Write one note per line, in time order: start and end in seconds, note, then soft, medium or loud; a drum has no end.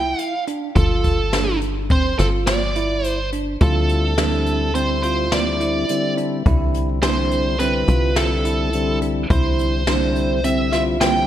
0.00 0.15 C2 loud
0.00 0.33 E4 medium
0.00 0.21 G5 medium
0.19 0.44 F5 medium
0.19 closed hi-hat medium
0.47 0.69 D4 medium
0.47 closed hi-hat medium
0.76 2.14 G1 loud
0.76 1.18 F4 medium
0.76 1.57 A4 medium
0.76 kick loud
0.76 closed hi-hat medium
1.04 kick medium
1.04 closed hi-hat medium
1.33 1.75 D4 medium
1.33 snare medium
1.33 closed hi-hat medium
1.61 closed hi-hat medium
1.90 2.12 C4 medium
1.90 2.18 C5 medium
1.90 kick medium
1.90 closed hi-hat medium
2.19 3.57 G1 medium
2.19 2.61 F4 medium
2.19 2.26 A4 medium
2.19 snare soft
2.19 closed hi-hat medium
2.47 3.06 D5 medium
2.47 snare loud
2.47 closed hi-hat medium
2.75 3.18 E4 medium
2.75 closed hi-hat medium
3.04 3.29 C5 medium
3.04 closed hi-hat medium
3.33 3.54 D4 medium
3.33 closed hi-hat medium
3.61 5.85 D2 loud
3.61 4.14 D3 medium
3.61 4.15 G3 medium
3.61 4.15 C4 medium
3.61 4.15 E4 medium
3.61 4.03 F4 medium
3.61 4.75 A4 medium
3.61 kick loud
3.61 closed hi-hat medium
3.89 closed hi-hat soft
4.18 4.72 D3 medium
4.18 4.72 G3 medium
4.18 4.72 C4 medium
4.18 4.61 D4 medium
4.18 4.72 E4 medium
4.18 snare loud
4.18 closed hi-hat medium
4.46 closed hi-hat medium
4.75 5.28 D3 medium
4.75 5.28 G3 medium
4.75 4.96 C4 medium
4.75 5.29 C4 medium
4.75 5.29 E4 medium
4.75 5.02 C5 medium
4.75 closed hi-hat medium
5.03 5.46 F4 medium
5.03 5.30 C5 medium
5.03 closed hi-hat medium
5.32 5.85 D3 medium
5.32 5.86 G3 medium
5.32 5.86 C4 medium
5.32 5.86 E4 medium
5.32 6.13 D5 medium
5.32 snare medium
5.32 closed hi-hat medium
5.61 6.03 E4 medium
5.61 closed hi-hat medium
5.89 6.43 D3 medium
5.89 6.43 G3 medium
5.89 6.43 C4 medium
5.89 6.43 E4 medium
5.89 closed hi-hat medium
6.18 6.39 D4 medium
6.18 closed hi-hat medium
6.46 7.84 C2 loud
6.46 7.00 D3 medium
6.46 7.00 G3 medium
6.46 7.00 C4 medium
6.46 6.88 E4 medium
6.46 7.00 E4 medium
6.46 kick loud
6.46 closed hi-hat medium
6.74 closed hi-hat medium
7.02 7.56 D3 medium
7.02 7.57 G3 medium
7.02 7.56 C4 medium
7.02 7.45 D4 medium
7.02 7.57 E4 medium
7.02 7.59 C5 medium
7.02 snare medium
7.02 closed hi-hat medium
7.31 closed hi-hat medium
7.59 8.13 D3 medium
7.59 8.13 G3 medium
7.59 7.81 C4 medium
7.59 8.13 C4 medium
7.59 8.13 E4 medium
7.59 8.16 B4 medium
7.59 snare soft
7.59 closed hi-hat medium
7.88 9.26 C2 medium
7.88 8.30 F4 medium
7.88 closed hi-hat medium
8.16 8.70 D3 medium
8.16 8.70 G3 medium
8.16 8.70 C4 medium
8.16 8.70 E4 medium
8.16 8.98 A4 medium
8.16 snare medium
8.16 closed hi-hat medium
8.45 8.87 E4 medium
8.45 closed hi-hat medium
8.73 9.27 D3 medium
8.73 9.27 G3 medium
8.73 9.27 C4 medium
8.73 9.27 E4 medium
8.73 closed hi-hat medium
9.02 9.23 D4 medium
9.02 closed hi-hat medium
9.30 11.27 C2 loud
9.30 9.84 D3 medium
9.30 9.84 G3 medium
9.30 9.84 C4 medium
9.30 9.72 E4 medium
9.30 9.84 E4 medium
9.30 10.48 C5 medium
9.30 kick loud
9.30 closed hi-hat medium
9.59 closed hi-hat medium
9.87 10.41 D3 medium
9.87 10.41 G3 medium
9.87 10.41 C4 medium
9.87 10.30 D4 medium
9.87 10.41 E4 medium
9.87 snare medium
9.87 closed hi-hat medium
10.16 closed hi-hat medium
10.44 10.98 D3 medium
10.44 10.98 G3 medium
10.44 10.65 C4 medium
10.44 10.98 C4 medium
10.44 10.98 E4 medium
10.44 10.71 E5 medium
10.44 closed hi-hat medium
10.72 11.15 F4 medium
10.72 10.80 E5 medium
10.72 snare soft
10.72 closed hi-hat medium
11.01 11.27 D3 medium
11.01 11.27 G3 medium
11.01 11.27 C4 medium
11.01 11.27 E4 medium
11.01 11.27 G5 medium
11.01 snare medium
11.01 closed hi-hat medium